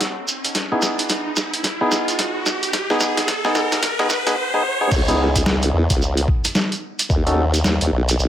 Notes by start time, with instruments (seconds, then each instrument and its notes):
Already playing: riser
0.01 snare, closed hi-hat, shekere
0.28 shekere
0.44 closed hi-hat, shekere
0.55 snare, closed hi-hat, shekere
0.72 clav B3 D#4 E4 G#4
0.82 snare, shekere
0.99 closed hi-hat, shekere
1.09 snare, closed hi-hat, shekere
1.36 snare, shekere
1.53 closed hi-hat, shekere
1.64 snare, closed hi-hat, shekere
1.81 clav B3 D#4 E4 G#4
1.92 snare, shekere
2.08 closed hi-hat, shekere
2.19 snare, closed hi-hat, shekere
2.46 snare, shekere
2.63 closed hi-hat, shekere
2.73 snare, closed hi-hat, shekere
2.90 clav B3 D#4 G#4, snare
3.00 snare, shekere
3.17 snare, closed hi-hat, shekere
3.28 snare, closed hi-hat, shekere
3.45 clav B3 D#4 G#4, snare
3.55 snare, shekere
3.72 snare, closed hi-hat, shekere
3.83 snare, closed hi-hat, shekere
3.99 clav B3 D#4 G#4, snare
4.10 snare, shekere
4.27 clav B3 D#4 G#4, snare, closed hi-hat, shekere
4.54 clav B3 D#4 G#4
4.81 clav B3 D#4 G#4
4.91 wobble bass C#2, kick, crash, shekere
5.08 clav B3 D#4 E4 G#4, closed hi-hat, shekere
5.36 kick, closed hi-hat, shekere
5.46 snare, shekere
5.62 closed hi-hat, shekere
5.73 wobble bass E2
5.90 wobble bass C#2, kick, closed hi-hat, shekere
6.02 shekere
6.17 closed hi-hat, shekere
6.28 kick
6.45 cross-stick, closed hi-hat, shekere
6.55 snare, shekere
6.72 closed hi-hat, shekere
6.99 closed hi-hat, shekere
7.10 wobble bass D#2, kick, shekere
7.27 clav C#4 D#4 F#4 A4, closed hi-hat, shekere
7.54 closed hi-hat, shekere
7.64 wobble bass D#2, snare, shekere
7.81 wobble bass D#2, closed hi-hat, shekere
7.92 wobble bass B1
8.09 closed hi-hat, shekere
8.19 wobble bass B1, shekere